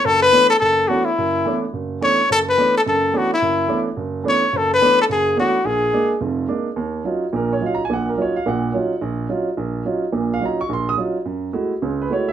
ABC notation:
X:1
M:4/4
L:1/8
Q:"Swing" 1/4=214
K:Bdor
V:1 name="Trumpet"
A B2 A A2 F E- | E3 z3 c2 | A B2 A A2 F E- | E3 z3 c2 |
A B2 A G2 F2 | G4 z4 | [K:Ebm] z8 | z8 |
z8 | z8 | z8 |]
V:2 name="Grand piano"
z8 | z8 | z8 | z8 |
z8 | z8 | [K:Ebm] z4 B d (3f b a | g B d f g4- |
g2 z6 | z f b d' =c' e' z2 | z4 z c d _f |]
V:3 name="Grand piano"
F,,,2 [E,A,B,CD] z F,,,2 [E,A,B,CD] z | F,,,2 [E,A,B,CD] z F,,,2 [E,A,B,CD] z | F,,,2 [E,A,B,CD] z [F,,,F,,]2 [E,A,B,CD] z | F,,,2 [E,A,B,CD] z F,,,2 [E,A,B,CD] z |
F,,,2 [E,A,B,CD] z F,,,2 [E,A,B,CD] z | ^A,,,2 [G,^A,D] z [^E,,,^E,,]2 [G,A,D] z | [K:Ebm] E,,2 [G,DEF] z [B,,,B,,]2 [G,DEF] z | [B,,,B,,]2 [G,DEF] z [B,,,B,,]2 [G,DEF] z |
B,,,2 [G,DEF] z B,,,2 [G,DEF] z | [B,,,B,,]2 [G,DEF] z B,,,2 [G,DEF] z | G,,2 [A,=A,_FG] z [D,,D,]2 [_A,=A,FG] z |]